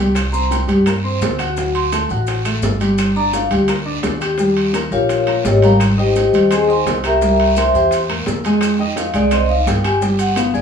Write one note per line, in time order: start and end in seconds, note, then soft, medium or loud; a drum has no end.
0.00 0.63 C2 loud
0.00 0.13 G3 medium
0.00 0.13 G4 medium
0.00 0.13 G5 loud
0.15 high bongo medium
0.15 high timbale loud
0.15 long guiro medium
0.15 claves medium
0.15 maracas medium
0.32 0.62 C4 medium
0.32 0.62 C5 medium
0.32 0.50 A#5 loud
0.32 0.62 C6 medium
0.32 high bongo soft
0.32 maracas medium
0.51 0.68 G5 medium
0.51 high bongo medium
0.51 high timbale medium
0.51 low timbale medium
0.51 short guiro medium
0.51 maracas medium
0.67 1.17 G2 medium
0.67 0.83 G3 medium
0.67 0.83 G4 medium
0.67 0.83 G5 medium
0.67 high bongo soft
0.67 high timbale medium
0.67 short guiro medium
0.67 maracas soft
0.86 1.01 A#3 medium
0.86 1.01 A#4 medium
0.86 1.01 A#5 medium
0.86 high bongo medium
0.86 high timbale medium
0.86 long guiro medium
0.86 claves medium
0.86 maracas medium
1.04 1.33 C4 medium
1.04 1.33 C5 medium
1.04 1.33 C6 medium
1.21 2.04 D2 medium
1.21 high bongo medium
1.21 low bongo medium
1.21 high timbale medium
1.21 low timbale medium
1.21 short guiro medium
1.21 maracas medium
1.39 1.54 F#4 medium
1.39 1.54 F#5 medium
1.39 1.54 F#6 medium
1.39 high bongo soft
1.39 high timbale medium
1.39 short guiro medium
1.39 claves medium
1.39 maracas soft
1.57 1.86 F#3 medium
1.57 1.86 F#4 medium
1.57 1.87 F#5 medium
1.57 high bongo medium
1.57 long guiro medium
1.57 maracas medium
1.75 1.92 C6 loud
1.75 high timbale medium
1.92 2.07 A3 medium
1.92 2.07 A4 medium
1.92 2.08 A5 medium
1.92 2.10 A5 medium
1.92 high bongo medium
1.92 high timbale medium
1.92 low timbale medium
1.92 short guiro medium
1.92 claves medium
1.92 maracas medium
2.09 2.59 A1 medium
2.09 2.40 F#4 medium
2.09 2.40 F#5 medium
2.09 2.40 F#6 medium
2.09 high bongo soft
2.09 short guiro medium
2.09 maracas soft
2.27 high bongo medium
2.27 high timbale medium
2.27 long guiro medium
2.27 maracas medium
2.45 2.75 A3 medium
2.45 2.75 A4 medium
2.45 2.75 A5 medium
2.45 high bongo soft
2.45 high timbale medium
2.45 claves medium
2.45 maracas medium
2.62 3.45 G1 medium
2.62 high bongo medium
2.62 low bongo medium
2.62 low timbale medium
2.62 short guiro medium
2.62 maracas medium
2.80 3.09 G3 medium
2.80 3.10 G4 loud
2.80 3.10 G5 loud
2.80 high bongo soft
2.80 high timbale medium
2.80 short guiro medium
2.80 maracas soft
2.98 high bongo medium
2.98 high timbale loud
2.98 long guiro medium
2.98 claves medium
2.98 maracas medium
3.16 3.45 D4 medium
3.16 3.45 D5 medium
3.16 3.33 A#5 loud
3.16 3.45 D6 medium
3.16 high bongo soft
3.33 3.45 F5 loud
3.33 high bongo medium
3.33 high timbale medium
3.33 low timbale medium
3.33 short guiro medium
3.33 maracas medium
3.51 4.00 D2 medium
3.51 3.66 G3 medium
3.51 3.66 G4 medium
3.51 3.66 G5 medium
3.51 high bongo soft
3.51 high timbale medium
3.51 short guiro medium
3.51 maracas soft
3.68 3.83 A#3 medium
3.68 3.84 A#4 medium
3.68 3.84 A#5 medium
3.68 high bongo medium
3.68 high timbale medium
3.68 long guiro medium
3.68 claves medium
3.68 maracas medium
3.85 4.15 D4 medium
3.85 4.15 D5 medium
3.85 4.15 D6 medium
4.03 4.86 D#2 medium
4.03 high bongo medium
4.03 low bongo medium
4.03 high timbale medium
4.03 low timbale medium
4.03 short guiro medium
4.03 maracas medium
4.20 4.36 G4 medium
4.20 4.36 G5 medium
4.20 4.36 G6 medium
4.20 high bongo soft
4.20 high timbale loud
4.20 short guiro medium
4.20 claves medium
4.20 maracas soft
4.38 4.68 G3 medium
4.38 4.68 G4 medium
4.38 4.68 G5 medium
4.38 high bongo medium
4.38 long guiro medium
4.38 maracas medium
4.57 high timbale medium
4.73 4.89 A#3 medium
4.73 4.89 A#4 medium
4.73 4.89 A#5 medium
4.73 high bongo medium
4.73 high timbale medium
4.73 low timbale medium
4.73 short guiro medium
4.73 claves medium
4.73 maracas medium
4.91 5.41 A#1 medium
4.91 5.42 F4 medium
4.91 5.21 G4 medium
4.91 5.42 A#4 medium
4.91 5.42 C#5 medium
4.91 5.41 F5 medium
4.91 5.21 G5 medium
4.91 5.21 G6 medium
4.91 high bongo soft
4.91 short guiro medium
4.91 maracas soft
5.09 high bongo medium
5.09 high timbale medium
5.09 long guiro medium
5.09 maracas medium
5.27 5.56 A#3 medium
5.27 5.57 A#4 medium
5.27 5.57 A#5 medium
5.27 high bongo soft
5.27 high timbale medium
5.27 claves medium
5.44 6.27 G#1 medium
5.44 5.63 G4 medium
5.44 5.63 C#5 medium
5.44 5.63 D#5 medium
5.44 5.63 G5 medium
5.44 high bongo medium
5.44 low bongo medium
5.44 low timbale medium
5.44 short guiro medium
5.44 maracas medium
5.62 5.92 G3 loud
5.62 5.92 G4 medium
5.62 5.81 A#4 medium
5.62 5.81 F5 medium
5.62 5.92 G5 medium
5.62 5.81 G5 medium
5.62 5.80 A#5 loud
5.62 high bongo soft
5.62 high timbale medium
5.62 short guiro medium
5.62 maracas soft
5.80 high bongo medium
5.80 high timbale loud
5.80 long guiro medium
5.80 claves medium
5.80 maracas medium
5.97 6.26 D#4 medium
5.97 6.48 G4 medium
5.97 6.48 C5 medium
5.97 6.27 D#5 medium
5.97 6.48 D#5 medium
5.97 6.48 G5 medium
5.97 6.27 D#6 medium
5.97 high bongo soft
6.16 high bongo medium
6.16 high timbale medium
6.16 low timbale medium
6.16 short guiro medium
6.16 maracas medium
6.33 6.82 D#2 medium
6.33 6.47 G3 medium
6.33 6.48 G4 medium
6.33 6.48 G5 medium
6.33 high bongo soft
6.33 high timbale medium
6.33 short guiro medium
6.33 maracas soft
6.50 6.65 C4 medium
6.50 6.69 G#4 medium
6.50 6.65 C5 medium
6.50 6.69 C5 medium
6.50 6.69 D#5 medium
6.50 6.69 G#5 loud
6.50 6.65 C6 medium
6.50 high bongo medium
6.50 high timbale medium
6.50 long guiro medium
6.50 claves medium
6.50 maracas medium
6.68 6.97 D#4 medium
6.68 6.86 C5 medium
6.68 6.97 D#5 medium
6.68 6.87 G5 medium
6.68 6.87 G#5 medium
6.68 6.86 C6 loud
6.68 6.97 D#6 medium
6.85 7.68 C2 medium
6.85 high bongo medium
6.85 low bongo medium
6.85 high timbale medium
6.85 low timbale medium
6.85 short guiro medium
6.85 maracas medium
7.04 7.18 G4 medium
7.04 7.54 A#4 medium
7.04 7.54 E5 medium
7.04 7.18 G5 medium
7.04 7.54 G5 medium
7.04 7.54 A#5 medium
7.04 7.18 G6 medium
7.04 high bongo soft
7.04 high timbale medium
7.04 short guiro medium
7.04 claves medium
7.04 maracas soft
7.21 7.50 G3 medium
7.21 7.51 G4 medium
7.21 7.51 G5 medium
7.21 high bongo medium
7.21 long guiro medium
7.21 maracas medium
7.40 high timbale medium
7.56 7.71 A#3 medium
7.56 7.71 A#4 medium
7.56 7.74 C5 medium
7.56 7.74 E5 medium
7.56 7.75 G5 medium
7.56 7.72 A#5 medium
7.56 7.74 C6 medium
7.56 high bongo medium
7.56 high timbale loud
7.56 low timbale medium
7.56 short guiro medium
7.56 claves medium
7.56 maracas medium
7.74 8.23 E2 loud
7.74 8.03 G4 medium
7.74 7.86 C5 medium
7.74 7.86 E5 medium
7.74 8.03 G5 medium
7.74 7.86 G5 medium
7.74 7.85 C6 loud
7.74 8.03 G6 medium
7.74 high bongo soft
7.74 short guiro medium
7.74 maracas soft
7.91 high bongo medium
7.91 high timbale medium
7.91 long guiro medium
7.91 maracas medium
8.09 8.38 A#3 medium
8.09 8.38 A#4 medium
8.09 8.38 A#5 medium
8.09 high bongo soft
8.09 high timbale loud
8.09 claves medium
8.26 9.09 F2 loud
8.26 high bongo medium
8.26 low bongo medium
8.26 low timbale medium
8.26 short guiro medium
8.26 maracas medium
8.44 8.74 G#3 medium
8.44 8.74 G#4 medium
8.44 8.74 G#5 loud
8.44 high bongo soft
8.44 high timbale medium
8.44 short guiro medium
8.44 maracas soft
8.61 high bongo medium
8.61 high timbale loud
8.61 long guiro medium
8.61 claves medium
8.61 maracas medium
8.78 9.08 D#4 medium
8.78 9.09 D#5 medium
8.78 8.96 G5 medium
8.78 9.09 D#6 medium
8.78 high bongo soft
8.96 9.14 F5 medium
8.96 high bongo medium
8.96 high timbale medium
8.96 low timbale medium
8.96 short guiro medium
8.96 maracas medium
9.14 9.63 C2 loud
9.14 9.29 G#3 medium
9.14 9.29 G#4 medium
9.14 9.32 D5 loud
9.14 9.29 G#5 medium
9.14 high bongo soft
9.14 high timbale medium
9.14 short guiro medium
9.14 maracas soft
9.31 9.46 C4 medium
9.31 9.47 C5 medium
9.31 9.50 D#5 loud
9.31 9.47 C6 medium
9.31 high bongo medium
9.31 high timbale loud
9.31 long guiro medium
9.31 claves medium
9.31 maracas medium
9.49 9.79 D#4 medium
9.49 9.79 D#5 medium
9.49 9.66 F5 loud
9.49 9.79 D#6 medium
9.66 10.49 G1 medium
9.66 9.84 G5 loud
9.66 high bongo medium
9.66 low bongo medium
9.66 high timbale medium
9.66 low timbale medium
9.66 short guiro medium
9.66 maracas medium
9.84 9.99 G4 medium
9.84 9.99 G5 medium
9.84 10.02 G#5 loud
9.84 9.99 G6 medium
9.84 high bongo soft
9.84 high timbale loud
9.84 short guiro medium
9.84 claves medium
9.84 maracas soft
10.01 10.31 G3 medium
10.01 10.30 G4 medium
10.01 10.31 G5 medium
10.01 10.19 G5 medium
10.01 high bongo medium
10.01 long guiro medium
10.01 maracas medium
10.19 10.37 F#5 loud
10.19 high timbale medium
10.19 maracas medium
10.36 10.51 B3 medium
10.36 10.51 B4 medium
10.36 10.54 F5 medium
10.36 10.52 B5 medium
10.36 high bongo medium
10.36 high timbale loud
10.36 low timbale medium
10.36 short guiro medium
10.36 claves medium
10.36 maracas medium
10.54 10.62 A#1 medium
10.54 10.62 G#4 medium
10.54 10.62 D5 medium
10.54 10.62 G#5 medium
10.54 10.62 G#6 medium
10.54 short guiro medium
10.54 maracas soft